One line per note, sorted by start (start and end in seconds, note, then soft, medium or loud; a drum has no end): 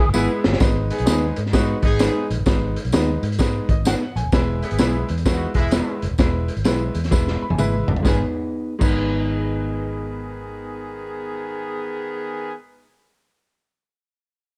0.07 0.13 F#1 medium
0.13 0.26 G#1 medium
0.13 0.46 G#3 loud
0.13 0.58 B3 medium
0.13 0.30 B3 medium
0.13 0.46 B3 medium
0.13 0.58 E4 loud
0.13 0.46 E4 medium
0.13 0.31 E4 medium
0.13 0.58 G#4 loud
0.13 0.31 G#4 medium
0.13 0.46 B4 loud
0.13 0.31 B4 medium
0.13 tambourine loud
0.44 0.58 G1 medium
0.44 snare loud
0.53 snare loud
0.60 0.90 G#1 loud
0.60 0.92 G#3 medium
0.60 0.92 D#4 medium
0.60 0.93 B4 medium
0.60 kick loud
0.60 snare loud
0.60 closed hi-hat medium
0.60 tambourine medium
0.90 1.35 B3 medium
0.90 1.35 D#4 medium
0.90 1.35 G#4 medium
0.90 closed hi-hat medium
0.98 1.06 B1 medium
0.98 closed hi-hat medium
1.06 1.31 D#2 medium
1.06 1.38 G#3 medium
1.06 1.23 B3 medium
1.06 1.38 D#4 medium
1.06 1.24 D#4 medium
1.06 1.24 G#4 medium
1.06 1.39 B4 medium
1.06 1.24 B4 medium
1.06 snare loud
1.06 closed hi-hat medium
1.06 tambourine loud
1.36 1.73 G#2 medium
1.36 closed hi-hat medium
1.46 snare soft
1.53 1.85 G#3 medium
1.53 1.77 B3 medium
1.53 1.85 D#4 medium
1.53 1.77 D#4 medium
1.53 1.77 F#4 medium
1.53 1.85 B4 loud
1.53 kick medium
1.53 snare loud
1.53 closed hi-hat loud
1.53 tambourine medium
1.82 2.08 G#1 loud
1.82 2.27 B3 loud
1.82 2.27 D#4 loud
1.82 2.27 G#4 loud
1.82 kick medium
1.82 closed hi-hat medium
1.99 2.32 G#3 medium
1.99 2.16 B3 medium
1.99 2.32 D#4 medium
1.99 2.16 D#4 medium
1.99 2.17 G#4 medium
1.99 2.32 B4 loud
1.99 2.17 B4 medium
1.99 snare loud
1.99 closed hi-hat loud
1.99 tambourine loud
2.31 2.37 A#1 medium
2.31 closed hi-hat medium
2.39 2.45 G1 medium
2.46 2.76 G#1 loud
2.46 2.78 G#3 medium
2.46 2.78 D#4 medium
2.46 2.79 B4 medium
2.46 kick loud
2.46 snare loud
2.46 closed hi-hat medium
2.46 tambourine medium
2.76 closed hi-hat medium
2.85 2.91 B1 medium
2.85 closed hi-hat medium
2.92 3.17 D#2 medium
2.92 3.25 G#3 medium
2.92 3.09 B3 medium
2.92 3.25 D#4 medium
2.92 3.09 D#4 medium
2.92 3.10 G#4 medium
2.92 3.25 B4 medium
2.92 3.10 B4 medium
2.92 snare loud
2.92 closed hi-hat medium
2.92 tambourine medium
3.23 3.59 G#2 loud
3.23 closed hi-hat medium
3.32 closed hi-hat medium
3.39 3.71 G#3 medium
3.39 3.71 D#4 medium
3.39 3.71 B4 medium
3.39 kick medium
3.39 snare loud
3.39 closed hi-hat loud
3.39 tambourine medium
3.69 3.93 G#1 loud
3.69 3.86 D#5 medium
3.69 kick medium
3.69 closed hi-hat medium
3.85 4.02 B3 medium
3.85 4.02 D#4 medium
3.85 4.02 G#4 medium
3.85 4.03 B4 medium
3.85 4.15 F#5 medium
3.85 snare loud
3.85 closed hi-hat medium
3.85 tambourine medium
4.16 4.22 A#1 medium
4.16 4.60 G#5 medium
4.16 closed hi-hat medium
4.24 4.30 D#1 medium
4.32 4.62 E1 loud
4.32 4.65 G#3 medium
4.32 4.65 E4 medium
4.32 4.65 B4 medium
4.32 kick loud
4.32 snare loud
4.32 closed hi-hat medium
4.32 tambourine medium
4.63 5.06 B3 medium
4.63 5.06 E4 medium
4.63 5.06 G#4 medium
4.63 closed hi-hat medium
4.71 4.78 G#1 medium
4.71 closed hi-hat medium
4.78 5.02 B1 medium
4.78 5.11 G#3 medium
4.78 4.95 B3 medium
4.78 4.95 E4 medium
4.78 5.11 E4 medium
4.78 4.96 G#4 medium
4.78 5.11 B4 loud
4.78 4.96 B4 medium
4.78 snare loud
4.78 closed hi-hat medium
4.78 tambourine medium
5.09 5.45 E2 loud
5.09 closed hi-hat medium
5.18 closed hi-hat medium
5.25 5.57 G#3 medium
5.25 5.49 B3 medium
5.25 5.50 D#4 medium
5.25 5.57 E4 medium
5.25 5.50 F#4 medium
5.25 5.57 B4 medium
5.25 kick medium
5.25 snare loud
5.25 closed hi-hat medium
5.25 tambourine medium
5.54 5.79 E1 loud
5.54 5.99 G#3 loud
5.54 5.99 B3 medium
5.54 6.00 E4 loud
5.54 kick medium
5.54 closed hi-hat medium
5.71 6.04 G#3 medium
5.71 5.88 B3 medium
5.71 6.04 E4 medium
5.71 5.89 E4 medium
5.71 5.89 G#4 medium
5.71 6.04 B4 loud
5.71 5.89 B4 medium
5.71 snare loud
5.71 closed hi-hat medium
5.71 tambourine medium
6.02 6.09 F#1 medium
6.02 closed hi-hat medium
6.11 6.17 D#1 medium
6.18 6.48 E1 loud
6.18 6.51 G#3 medium
6.18 6.51 E4 medium
6.18 6.51 B4 medium
6.18 kick loud
6.18 snare loud
6.18 closed hi-hat medium
6.18 tambourine medium
6.48 closed hi-hat medium
6.57 6.63 G#1 medium
6.57 closed hi-hat soft
6.65 6.89 B1 medium
6.65 6.97 G#3 medium
6.65 6.81 B3 medium
6.65 6.97 E4 medium
6.65 6.82 E4 medium
6.65 6.82 G#4 medium
6.65 6.97 B4 loud
6.65 6.82 B4 medium
6.65 snare loud
6.65 closed hi-hat medium
6.65 tambourine medium
6.95 7.14 E2 medium
6.95 closed hi-hat medium
7.04 snare soft
7.04 closed hi-hat medium
7.11 7.35 E1 loud
7.11 7.43 G#3 medium
7.11 7.43 E4 medium
7.11 7.43 B4 loud
7.11 kick medium
7.11 snare medium
7.11 tambourine medium
7.28 snare medium
7.42 7.50 B5 medium
7.42 muted fingered electric bass stroke soft
7.50 7.57 F#1 medium
7.50 7.58 G#5 medium
7.50 high tom medium
7.58 7.81 G#1 medium
7.58 7.90 G#3 medium
7.58 7.74 B3 medium
7.58 7.90 E4 medium
7.58 7.75 E4 medium
7.58 7.75 G#4 medium
7.58 7.90 B4 loud
7.58 7.75 B4 medium
7.58 8.02 E5 medium
7.58 mid tom medium
7.58 tambourine medium
7.88 7.94 G1 medium
7.88 floor tom loud
7.96 floor tom medium
8.03 8.22 G#1 medium
8.03 8.21 D#3 medium
8.03 8.20 G#3 medium
8.03 8.74 B3 medium
8.03 8.21 B3 medium
8.03 8.21 D#4 medium
8.03 8.74 D#4 medium
8.03 8.21 G#4 loud
8.03 kick loud
8.03 snare medium
8.03 tambourine medium
8.07 8.74 G#4 medium
8.07 8.22 B4 medium
8.07 8.74 B4 medium
8.79 12.83 G#1 medium
8.79 12.52 D#3 medium
8.79 12.80 G#3 medium
8.79 12.85 B3 medium
8.79 12.53 B3 medium
8.79 12.82 D#4 medium
8.79 12.87 D#4 medium
8.79 12.53 G#4 medium
8.79 12.84 B4 medium
8.79 kick loud
8.79 crash medium
8.79 tambourine medium
8.83 12.89 G#4 medium
8.83 12.90 B4 medium